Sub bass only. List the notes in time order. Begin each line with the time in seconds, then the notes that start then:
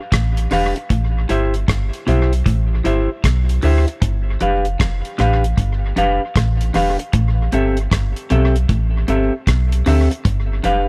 0.12 A1
0.52 E1
0.90 A1
1.30 G1
1.69 G1
2.08 B1
2.46 A1
2.86 G1
3.24 B1
3.64 D2
4.02 G1
4.42 F1
4.80 F1
5.20 A1
5.58 G1
5.97 F1
6.36 A1
6.75 E1
7.14 A1
7.53 G1
7.92 G1
8.31 B1
8.69 A1
9.08 G1
9.47 B1
9.86 D2
10.26 G1
10.65 F1